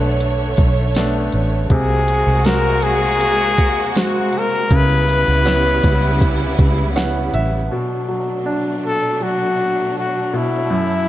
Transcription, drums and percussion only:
0.20 closed hi-hat loud
0.57 kick medium
0.57 closed hi-hat medium
0.95 snare loud
0.95 closed hi-hat medium
1.32 closed hi-hat medium
1.70 kick medium
1.70 closed hi-hat medium
2.08 closed hi-hat medium
2.45 snare loud
2.45 closed hi-hat medium
2.82 closed hi-hat medium
3.21 closed hi-hat medium
3.58 kick medium
3.58 closed hi-hat medium
3.96 snare loud
3.96 closed hi-hat medium
4.33 closed hi-hat medium
4.71 kick medium
4.71 closed hi-hat medium
5.09 closed hi-hat medium
5.45 snare medium
5.45 closed hi-hat medium
5.83 kick medium
5.83 closed hi-hat medium
6.21 kick medium
6.21 closed hi-hat medium
6.59 kick medium
6.59 closed hi-hat medium
6.96 snare loud
6.96 closed hi-hat medium
7.34 closed hi-hat medium

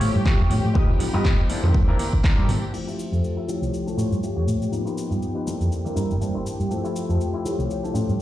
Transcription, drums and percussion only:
0.01 open hi-hat loud
0.01 tambourine medium
0.01 high conga medium
0.15 tambourine soft
0.26 kick loud
0.26 clap loud
0.50 open hi-hat medium
0.50 tambourine medium
0.50 high conga medium
0.50 low conga medium
0.64 tambourine soft
0.75 kick loud
0.75 tambourine medium
0.89 tambourine soft
0.89 high conga medium
0.99 open hi-hat loud
0.99 tambourine loud
0.99 low conga loud
1.14 tambourine soft
1.25 kick loud
1.25 clap loud
1.25 tambourine medium
1.25 high conga medium
1.39 tambourine soft
1.50 open hi-hat medium
1.50 tambourine medium
1.63 tambourine soft
1.63 high conga medium
1.63 low conga medium
1.74 kick loud
1.74 tambourine medium
1.88 tambourine soft
1.99 open hi-hat loud
1.99 tambourine medium
1.99 high conga medium
2.13 kick medium
2.13 tambourine soft
2.24 kick loud
2.24 clap loud
2.24 tambourine medium
2.38 tambourine soft
2.49 open hi-hat medium
2.49 tambourine loud
2.49 high conga medium
2.49 low conga medium
2.62 tambourine soft
2.74 crash medium
2.74 shaker soft
2.88 shaker soft
2.99 shaker medium
3.13 shaker soft
3.24 shaker soft
3.49 shaker medium
3.63 shaker soft
3.74 shaker soft
3.88 shaker soft
3.99 shaker medium
4.12 shaker soft
4.23 shaker soft
4.48 shaker medium
4.62 shaker soft
4.73 shaker soft
4.87 shaker soft
4.98 shaker medium
5.12 shaker soft
5.22 shaker soft
5.47 shaker medium
5.61 shaker soft
5.72 shaker soft
5.86 shaker soft
5.97 shaker medium
6.11 shaker soft
6.22 shaker soft
6.46 shaker medium
6.60 shaker soft
6.71 shaker soft
6.85 shaker soft
6.96 shaker medium
7.10 shaker soft
7.21 shaker soft
7.46 shaker medium
7.60 shaker soft
7.71 shaker soft
7.85 shaker soft
7.95 shaker medium
8.09 shaker soft

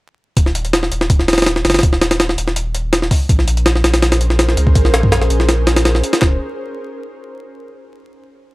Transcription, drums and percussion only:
0.37 kick loud
0.37 closed hi-hat medium
0.46 snare soft
0.55 closed hi-hat medium
0.65 closed hi-hat soft
0.73 snare loud
0.73 closed hi-hat medium
0.83 snare soft
0.92 closed hi-hat medium
1.01 snare medium
1.10 kick loud
1.10 closed hi-hat medium
1.19 snare soft
1.28 snare medium
1.28 closed hi-hat medium
1.33 snare medium
1.33 closed hi-hat medium
1.38 snare loud
1.38 closed hi-hat medium
1.42 snare medium
1.42 closed hi-hat medium
1.46 snare loud
1.46 closed hi-hat medium
1.56 snare medium
1.65 snare medium
1.65 closed hi-hat medium
1.70 snare medium
1.70 closed hi-hat medium
1.74 snare medium
1.74 closed hi-hat medium
1.79 snare medium
1.79 closed hi-hat medium
1.83 kick loud
1.83 closed hi-hat medium
1.93 snare soft
2.01 snare loud
2.01 closed hi-hat medium
2.11 snare loud
2.11 closed hi-hat medium
2.20 snare loud
2.20 closed hi-hat medium
2.29 snare soft
2.38 closed hi-hat medium
2.48 snare soft
2.56 closed hi-hat medium
2.75 closed hi-hat medium
2.93 snare loud
2.93 closed hi-hat medium
3.02 snare soft
3.11 kick loud
3.11 open hi-hat medium
3.29 kick loud
3.29 closed hi-hat medium
3.39 snare soft
3.48 closed hi-hat medium
3.57 closed hi-hat soft
3.66 snare loud
3.66 closed hi-hat medium
3.75 snare soft
3.84 snare loud
3.84 closed hi-hat medium
3.94 snare loud
3.94 closed hi-hat medium
4.02 snare loud
4.02 closed hi-hat medium
4.12 snare loud
4.12 closed hi-hat medium
4.21 closed hi-hat medium
4.30 snare soft
4.39 snare loud
4.39 closed hi-hat medium
4.49 snare medium
4.57 closed hi-hat medium
4.67 kick loud
4.75 kick loud
4.75 closed hi-hat medium
4.85 snare medium
4.94 snare loud
4.94 closed hi-hat medium
5.03 kick medium
5.12 snare loud
5.12 closed hi-hat medium
5.22 snare soft
5.30 closed hi-hat medium
5.40 snare soft
5.49 snare loud
5.49 closed hi-hat medium
5.67 snare loud
5.67 closed hi-hat medium
5.76 snare loud
5.76 closed hi-hat medium
5.85 snare loud
5.85 closed hi-hat medium
5.95 snare soft
6.04 closed hi-hat medium
6.13 snare loud
6.13 closed hi-hat medium
6.22 kick loud
6.22 snare loud
6.22 clap medium

